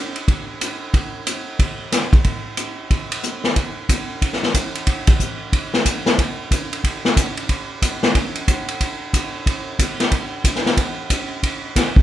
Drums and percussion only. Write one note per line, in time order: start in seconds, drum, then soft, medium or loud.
0.16 ride soft
0.28 kick soft
0.28 ride soft
0.61 hi-hat pedal soft
0.61 ride medium
0.94 kick soft
0.94 ride soft
1.27 hi-hat pedal soft
1.27 ride medium
1.59 kick soft
1.59 ride medium
1.92 snare soft
1.92 hi-hat pedal soft
1.92 ride medium
2.13 kick medium
2.13 ride soft
2.24 kick soft
2.24 ride soft
2.57 hi-hat pedal soft
2.57 ride medium
2.90 kick soft
2.90 ride soft
3.12 ride medium
3.23 hi-hat pedal medium
3.44 snare soft
3.56 kick soft
3.56 ride medium
3.89 kick soft
3.89 hi-hat pedal medium
3.89 ride medium
4.22 kick soft
4.22 ride medium
4.33 snare soft
4.43 snare soft
4.54 kick soft
4.54 hi-hat pedal medium
4.54 ride medium
4.75 ride soft
4.87 kick soft
4.87 ride medium
5.07 kick soft
5.07 ride medium
5.20 kick soft
5.20 hi-hat pedal soft
5.53 kick soft
5.53 ride medium
5.74 snare soft
5.85 kick soft
5.85 hi-hat pedal medium
5.85 ride medium
6.06 snare medium
6.18 kick soft
6.18 ride medium
6.51 kick soft
6.51 hi-hat pedal soft
6.51 ride medium
6.73 ride soft
6.84 kick soft
6.84 ride medium
7.05 snare soft
7.17 kick soft
7.17 hi-hat pedal medium
7.17 ride medium
7.37 ride soft
7.49 kick soft
7.49 ride medium
7.82 kick soft
7.82 hi-hat pedal medium
7.82 ride medium
8.03 snare medium
8.15 kick soft
8.15 ride medium
8.35 ride soft
8.48 kick soft
8.48 hi-hat pedal medium
8.48 ride medium
8.68 ride soft
8.81 kick soft
8.81 ride medium
9.13 kick soft
9.13 hi-hat pedal soft
9.13 ride medium
9.46 kick soft
9.46 ride medium
9.79 kick soft
9.79 hi-hat pedal medium
9.79 ride medium
10.00 snare soft
10.00 ride soft
10.12 kick soft
10.12 ride medium
10.44 kick soft
10.44 hi-hat pedal soft
10.44 ride medium
10.56 snare soft
10.66 snare soft
10.77 kick soft
10.77 ride medium
11.10 kick soft
11.10 hi-hat pedal medium
11.10 ride medium
11.43 kick soft
11.43 ride medium
11.76 kick soft
11.76 snare soft
11.76 hi-hat pedal soft
11.76 ride medium
11.96 kick medium